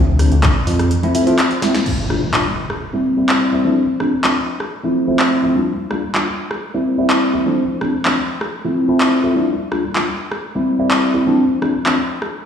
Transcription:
Already playing: analog synth bass D2
0.19 tine electric piano F3 A3 C4 D4, cross-stick, open hi-hat
0.32 analog synth bass D2, closed hi-hat
0.43 analog synth bass D2, tine electric piano F3 A3 C4 D4, kick, clap, closed hi-hat
0.67 analog synth bass F2, open hi-hat
0.79 cross-stick, closed hi-hat
0.91 closed hi-hat
1.03 tine electric piano F3 A3 C4 E4, closed hi-hat
1.14 tine electric piano F3 A3 C4 E4, open hi-hat
1.26 tine electric piano F3 A3 C4 F4, closed hi-hat
1.39 clap, closed hi-hat
1.51 closed hi-hat
1.62 tine electric piano G3 A#3 C4 E4, snare, open hi-hat
1.75 snare, closed hi-hat
1.86 crash, impact
2.09 tine electric piano G3 A#3 D4 F4, cross-stick
2.33 tine electric piano G3 A#3 D4 F4, clap
2.70 cross-stick
2.93 tine electric piano G3 A#3 C4 E4
3.17 tine electric piano G3 A#3 C4 E4
3.29 clap
3.52 tine electric piano G3 A#3 C4 E4
3.64 tine electric piano F3 A3 C4 D4
4.00 tine electric piano F3 A3 C4 D4, cross-stick
4.24 tine electric piano F3 A3 C4 D4, clap
4.60 cross-stick
4.83 tine electric piano F3 A3 C4 E4
5.07 tine electric piano F3 A3 C4 E4
5.19 clap
5.43 tine electric piano F3 A3 C4 E4
5.55 tine electric piano G3 A#3 D4 F4
5.90 tine electric piano G3 A#3 D4 F4, cross-stick
6.14 tine electric piano G3 A#3 D4 F4, clap
6.51 cross-stick
6.74 tine electric piano G3 A#3 C4 E4
6.98 tine electric piano G3 A#3 C4 E4
7.10 clap
7.33 tine electric piano G3 A#3 C4 E4
7.46 tine electric piano F3 A3 C4 D4
7.81 tine electric piano F3 A3 C4 D4, cross-stick
8.05 tine electric piano F3 A3 C4 D4, clap
8.41 cross-stick
8.64 tine electric piano F3 A3 C4 E4
8.88 tine electric piano F3 A3 C4 E4
9.01 clap
9.24 tine electric piano F3 A3 C4 E4
9.36 tine electric piano G3 A#3 D4 F4
9.71 tine electric piano G3 A#3 D4 F4, cross-stick
9.95 tine electric piano G3 A#3 D4 F4, clap
10.31 cross-stick
10.55 tine electric piano G3 A#3 C4 E4
10.79 tine electric piano G3 A#3 C4 E4
10.91 clap
11.14 tine electric piano G3 A#3 C4 E4
11.26 tine electric piano F3 A3 C4 D4
11.62 tine electric piano F3 A3 C4 D4, cross-stick
11.85 tine electric piano F3 A3 C4 D4, clap
12.22 cross-stick

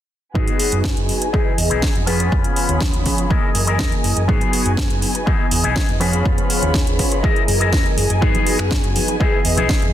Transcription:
0.34 fingered electric bass G#2, analog polysynth F#3 B3 D#4 G#4, clean electric guitar B3 F#4 G#4, violin section F#4 B4 G#5, kick
0.48 closed hi-hat
0.59 open hi-hat
0.72 fingered electric bass F#2, closed hi-hat
0.84 kick, snare
0.97 fingered electric bass F#2, closed hi-hat
1.09 open hi-hat
1.21 muted clean electric guitar stroke, closed hi-hat
1.33 analog polysynth E3 B3 G#4 D#5, clean electric guitar D#4 E4 G#4, violin section D#5, kick
1.58 fingered electric bass E2, open hi-hat
1.70 fingered electric bass B1, clean electric guitar D#4 E4 G#4, closed hi-hat
1.82 kick, snare
1.95 fingered electric bass F2, closed hi-hat
2.06 analog polysynth F3 B3 C#4 G#4, clean electric guitar C#4 F4 B4, violin section F4 C#5 B5, open hi-hat
2.20 closed hi-hat
2.32 fingered electric bass F2, kick
2.44 closed hi-hat
2.56 open hi-hat
2.69 fingered electric bass D#2, closed hi-hat
2.81 kick, snare
2.94 fingered electric bass D#2, closed hi-hat
3.06 kick, open hi-hat
3.18 muted clean electric guitar stroke, closed hi-hat
3.29 analog polysynth E3 A#3 G#4 D#5, clean electric guitar D#4 E4 G#4 A#4, violin section A#4 D#5 G#5, kick
3.55 fingered electric bass F#2, open hi-hat
3.67 clean electric guitar D#4 E4 G#4 A#4, closed hi-hat
3.79 fingered electric bass E2, kick, snare
3.92 closed hi-hat
4.04 fingered electric bass F#2, open hi-hat
4.16 fingered electric bass F#2, muted clean electric guitar stroke, closed hi-hat
4.28 fingered electric bass G#2, analog polysynth F#3 B3 D#4 G#4, clean electric guitar B3 F#4 G#4, violin section F#4 B4, kick
4.41 closed hi-hat
4.53 open hi-hat
4.65 fingered electric bass F#2, closed hi-hat
4.77 kick, snare
4.90 fingered electric bass F#2, closed hi-hat
5.02 open hi-hat
5.14 muted clean electric guitar stroke, closed hi-hat
5.26 analog polysynth E3 B3 G#4 D#5, clean electric guitar D#4 E4 G#4, violin section D#5, kick
5.51 fingered electric bass E2, open hi-hat
5.63 fingered electric bass B1, clean electric guitar D#4 E4 G#4, closed hi-hat
5.76 kick, snare
5.88 fingered electric bass F2, closed hi-hat
6.00 analog polysynth F3 B3 C#4 G#4, clean electric guitar C#4 F4 B4, violin section F4 C#5 B5, open hi-hat
6.13 closed hi-hat
6.25 fingered electric bass F2, kick
6.38 closed hi-hat
6.50 open hi-hat
6.62 fingered electric bass D#2, closed hi-hat
6.74 kick, snare
6.87 fingered electric bass D#2, closed hi-hat
6.99 kick, open hi-hat
7.11 muted clean electric guitar stroke, closed hi-hat
7.23 analog polysynth E3 A#3 G#4 D#5, clean electric guitar D#4 E4 G#4 A#4, violin section A#4 D#5 G#5, kick
7.36 closed hi-hat
7.48 fingered electric bass F#2, open hi-hat
7.60 clean electric guitar D#4 E4 G#4 A#4, closed hi-hat
7.73 fingered electric bass E2, kick, snare
7.86 closed hi-hat
7.97 fingered electric bass F#2, open hi-hat
8.10 fingered electric bass F#2, muted clean electric guitar stroke, closed hi-hat
8.21 fingered electric bass G#2, analog polysynth F#3 B3 D#4 G#4, clean electric guitar B3 F#4 G#4, violin section F#4 B4, kick, tambourine
8.34 closed hi-hat, tambourine, high conga
8.47 open hi-hat, tambourine
8.59 fingered electric bass F#2, finger snap, tambourine
8.71 kick, snare
8.83 fingered electric bass F#2, closed hi-hat
8.95 open hi-hat, tambourine, high conga
9.08 muted clean electric guitar stroke, closed hi-hat, tambourine
9.20 analog polysynth E3 B3 G#4 D#5, clean electric guitar D#4 E4 G#4, violin section D#5, kick, tambourine
9.32 tambourine
9.45 fingered electric bass E2, open hi-hat, tambourine
9.57 fingered electric bass B1, clean electric guitar D#4 E4 G#4, closed hi-hat, tambourine, high conga
9.69 kick, snare
9.82 fingered electric bass F2, closed hi-hat

